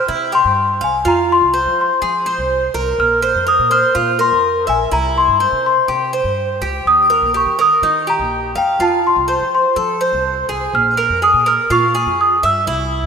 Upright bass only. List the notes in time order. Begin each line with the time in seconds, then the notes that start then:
0.09 C3
0.45 G2
0.81 C2
1.05 F2
1.41 C2
1.66 F3
2.02 F3
2.38 C2
2.74 C2
2.98 A#1
3.35 F2
3.59 A#2
3.95 A#2
4.32 F2
4.68 A#1
4.92 C2
5.28 G2
5.52 C3
5.88 C3
6.24 G2
6.61 C#2
6.85 D#2
7.22 A#1
7.46 D#3
7.82 D#3
8.19 A#1
8.55 E2
8.79 F2
9.16 C2
9.40 F3
9.76 F3
10.13 C2
10.49 C2
10.73 A#1
11.10 F2
11.34 A#2
11.70 A#2
12.06 F2
12.43 G2
12.67 C2